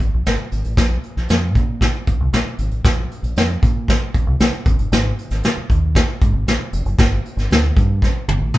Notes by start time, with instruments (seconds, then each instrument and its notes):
0.00 fingered electric bass G#1, kick
0.14 fingered electric bass A#1
0.26 fingered electric bass G#1, snare, closed hi-hat
0.52 fingered electric bass G#1, closed hi-hat
0.64 fingered electric bass A1, closed hi-hat
0.77 fingered electric bass A#1, kick, snare, closed hi-hat
1.03 closed hi-hat
1.17 fingered electric bass A#1, snare
1.29 fingered electric bass F2, snare, closed hi-hat
1.55 fingered electric bass A#2, kick, closed hi-hat
1.81 kick, snare, closed hi-hat
2.07 fingered electric bass A#1, kick, closed hi-hat
2.20 fingered electric bass C2
2.33 fingered electric bass A#1, snare, closed hi-hat
2.59 fingered electric bass G#1, closed hi-hat
2.71 fingered electric bass A1, closed hi-hat
2.84 fingered electric bass A#1, kick, snare, closed hi-hat
3.11 closed hi-hat
3.23 fingered electric bass A#1, closed hi-hat
3.36 fingered electric bass F2, snare, closed hi-hat
3.63 fingered electric bass A#2, kick, closed hi-hat
3.88 kick, snare, closed hi-hat
4.14 fingered electric bass A#1, kick, closed hi-hat
4.27 fingered electric bass C2
4.40 fingered electric bass A#1, snare, closed hi-hat
4.66 fingered electric bass G#1, kick, closed hi-hat
4.79 fingered electric bass G1, closed hi-hat
4.92 fingered electric bass G#1, snare, closed hi-hat
5.19 closed hi-hat
5.31 fingered electric bass G#1, snare, closed hi-hat
5.43 snare, closed hi-hat
5.57 muted fingered electric bass stroke
5.70 fingered electric bass D#2, kick, closed hi-hat
5.95 kick, snare, closed hi-hat
6.22 fingered electric bass G#2, kick, closed hi-hat
6.34 fingered electric bass G#1
6.47 fingered electric bass A#1, snare, closed hi-hat
6.73 fingered electric bass F1, closed hi-hat
6.86 fingered electric bass F#1, closed hi-hat
6.98 fingered electric bass G1, kick, snare, closed hi-hat
7.25 closed hi-hat
7.37 fingered electric bass G1, snare, closed hi-hat
7.50 fingered electric bass D2, snare, closed hi-hat
7.77 fingered electric bass G2, kick, closed hi-hat
8.02 kick, snare
8.28 fingered electric bass G1, high tom
8.41 fingered electric bass A1
8.54 mid tom